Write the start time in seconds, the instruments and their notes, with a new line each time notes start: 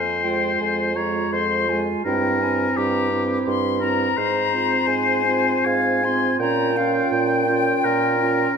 Already playing: bassoon F2, oboe C5, flute G#5
0.23 french horn G#3, clarinet F4, flute G5
0.60 bassoon F2, flute G#5
0.95 french horn G#3, clarinet F4, oboe C#5, flute A#5
1.32 bassoon F2, oboe C5, flute C6
1.68 french horn G#3, clarinet F4, flute G#5
2.05 bassoon G2, french horn C4, clarinet E4, oboe A#4, flute G5
2.42 french horn C4, clarinet E4, flute G#5
2.77 bassoon G2, oboe G4, flute A#5
3.12 french horn C4, clarinet E4
3.47 bassoon G2, flute C6
3.80 french horn C4, clarinet E4, oboe A#4, flute A#5
4.16 bassoon G#2, oboe C5
4.52 french horn C4, clarinet F4
4.87 bassoon G#2, flute G#5
5.26 french horn C4, clarinet F4
5.65 bassoon G#2, flute F5, oboe G#5
6.04 french horn C4, clarinet F4, flute C6
6.39 bassoon A#2, french horn C#4, clarinet F4, oboe G5, flute A#5
6.76 french horn C#4, clarinet F4, flute F5
7.12 bassoon A#2, flute G5
7.48 french horn C#4, clarinet F4
7.84 bassoon A#2, oboe A#4
8.20 french horn C#4, clarinet F4